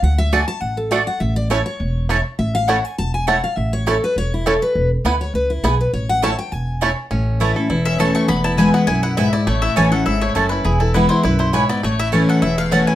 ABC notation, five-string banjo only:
X:1
M:4/4
L:1/8
Q:"Swing" 1/4=203
K:A
V:1 name="Five-string banjo"
z2 [A,DF] z3 [A,DF] z | z2 [A,CE] z3 [A,CE] z | z2 [A,CE] z3 [A,CE] z | z2 [A,CE] z3 [A,CE] z |
z2 [B,E] z3 [B,E] z | z2 [A,CE] z3 [A,CE] z | C2 E A E C A A, | B, E E B, E E E E |
A, E C A E A, C E | E E E E E E E B, | A, E C A E A, C E |]